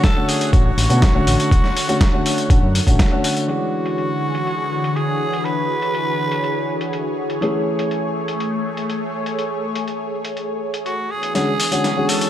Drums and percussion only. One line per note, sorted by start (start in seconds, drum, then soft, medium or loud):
0.04 kick loud
0.04 snare loud
0.04 closed hi-hat medium
0.04 tambourine soft
0.29 open hi-hat loud
0.29 tambourine medium
0.41 closed hi-hat medium
0.41 tambourine soft
0.53 kick loud
0.53 closed hi-hat medium
0.53 tambourine soft
0.78 open hi-hat loud
0.78 tambourine medium
0.90 closed hi-hat medium
0.90 tambourine soft
1.02 kick loud
1.02 snare loud
1.02 closed hi-hat medium
1.02 tambourine soft
1.27 open hi-hat loud
1.27 tambourine medium
1.40 closed hi-hat medium
1.40 tambourine soft
1.51 kick loud
1.51 closed hi-hat medium
1.51 tambourine soft
1.64 snare soft
1.76 open hi-hat loud
1.76 tambourine medium
1.89 closed hi-hat medium
1.89 tambourine soft
2.01 kick loud
2.01 snare loud
2.01 closed hi-hat medium
2.01 tambourine soft
2.26 open hi-hat loud
2.26 tambourine medium
2.38 closed hi-hat medium
2.38 tambourine soft
2.50 kick loud
2.50 closed hi-hat medium
2.50 tambourine soft
2.75 open hi-hat loud
2.75 tambourine medium
2.87 kick medium
2.87 closed hi-hat medium
2.87 tambourine soft
2.99 kick loud
2.99 snare loud
2.99 closed hi-hat medium
2.99 tambourine soft
3.24 open hi-hat loud
3.24 tambourine medium
3.37 closed hi-hat medium
3.37 tambourine soft
3.49 closed hi-hat soft
3.86 closed hi-hat medium
3.98 closed hi-hat soft
4.35 closed hi-hat medium
4.47 closed hi-hat soft
4.84 closed hi-hat medium
4.96 closed hi-hat soft
5.33 closed hi-hat medium
5.45 closed hi-hat soft
5.82 closed hi-hat medium
5.95 closed hi-hat soft
6.32 closed hi-hat medium
6.44 closed hi-hat soft
6.81 closed hi-hat medium
6.93 closed hi-hat soft
7.30 closed hi-hat medium
7.42 closed hi-hat soft
7.79 closed hi-hat medium
7.91 closed hi-hat soft
8.28 closed hi-hat medium
8.40 closed hi-hat soft
8.77 closed hi-hat medium
8.90 closed hi-hat soft
9.26 closed hi-hat medium
9.39 closed hi-hat soft
9.75 closed hi-hat medium
9.88 closed hi-hat soft
10.25 closed hi-hat medium
10.37 closed hi-hat soft
10.74 closed hi-hat medium
10.86 closed hi-hat soft
11.23 closed hi-hat medium
11.35 snare soft
11.35 closed hi-hat medium
11.35 tambourine soft
11.60 open hi-hat medium
11.60 tambourine medium
11.72 closed hi-hat medium
11.72 tambourine soft
11.84 snare soft
11.84 closed hi-hat medium
11.84 tambourine soft
12.09 open hi-hat loud
12.09 tambourine medium
12.21 closed hi-hat medium
12.21 tambourine soft